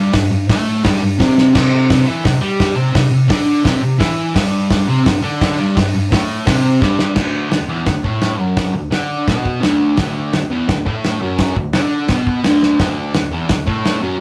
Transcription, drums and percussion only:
0.13 kick, snare, open hi-hat
0.49 kick, snare, open hi-hat
0.84 kick, snare, open hi-hat
1.20 kick, snare, open hi-hat
1.38 snare
1.55 kick, snare, splash, crash
1.90 kick, snare, open hi-hat
2.25 kick, snare, open hi-hat
2.60 kick, snare, open hi-hat
2.95 kick, snare, open hi-hat
3.30 kick, snare, open hi-hat
3.65 kick, snare, open hi-hat
4.00 kick, snare, open hi-hat
4.36 kick, snare, open hi-hat
4.70 kick, snare, open hi-hat
5.06 kick, snare, open hi-hat
5.41 kick, snare, open hi-hat
5.77 kick, snare, open hi-hat
6.12 kick, snare, open hi-hat
6.47 kick, snare, open hi-hat
6.82 kick, snare
6.99 snare
7.16 kick, snare, crash
7.51 snare, open hi-hat
7.86 kick, snare, open hi-hat
8.04 kick
8.22 snare, open hi-hat
8.57 kick, snare, open hi-hat
8.92 snare, open hi-hat
9.28 kick, snare, open hi-hat
9.45 kick
9.63 snare, open hi-hat
9.97 kick, snare, open hi-hat
10.33 snare, open hi-hat
10.69 kick, snare, open hi-hat
10.86 kick
11.04 snare, open hi-hat
11.39 kick, snare, open hi-hat
11.56 kick
11.73 snare, open hi-hat
12.08 kick, snare, open hi-hat
12.27 kick
12.44 snare, open hi-hat
12.63 snare
12.79 kick, snare, open hi-hat
13.14 snare, open hi-hat
13.49 kick, snare, open hi-hat
13.68 kick
13.85 snare, open hi-hat

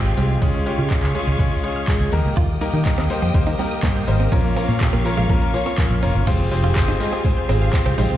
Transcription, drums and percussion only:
0.17 closed hi-hat
0.42 kick, closed hi-hat
0.66 closed hi-hat
0.90 kick, clap, closed hi-hat
1.03 clap
1.15 closed hi-hat
1.39 kick, closed hi-hat
1.64 closed hi-hat
1.88 kick, clap, closed hi-hat
2.12 closed hi-hat
2.37 kick, closed hi-hat
2.61 open hi-hat
2.85 kick, clap, closed hi-hat
2.98 clap
3.10 open hi-hat
3.34 kick, closed hi-hat
3.59 open hi-hat
3.83 kick, clap, closed hi-hat
4.07 open hi-hat
4.32 kick, closed hi-hat, shaker
4.45 shaker
4.57 open hi-hat, shaker
4.69 shaker
4.81 kick, clap, closed hi-hat, shaker
4.93 shaker
5.05 open hi-hat, shaker
5.17 shaker
5.29 kick, closed hi-hat, shaker
5.42 shaker
5.54 open hi-hat, shaker
5.66 shaker
5.78 kick, clap, closed hi-hat, shaker
5.91 shaker
6.02 open hi-hat, shaker
6.15 shaker
6.27 kick, closed hi-hat, crash, tambourine, shaker
6.40 shaker
6.52 open hi-hat, tambourine, shaker
6.64 shaker
6.76 kick, clap, closed hi-hat, tambourine, shaker
6.88 shaker
7.00 open hi-hat, tambourine, shaker
7.12 shaker
7.25 kick, closed hi-hat, tambourine, shaker
7.37 shaker
7.49 open hi-hat, tambourine, shaker
7.61 shaker
7.73 kick, clap, closed hi-hat, tambourine, shaker
7.86 shaker
7.98 open hi-hat, tambourine, shaker
8.10 shaker

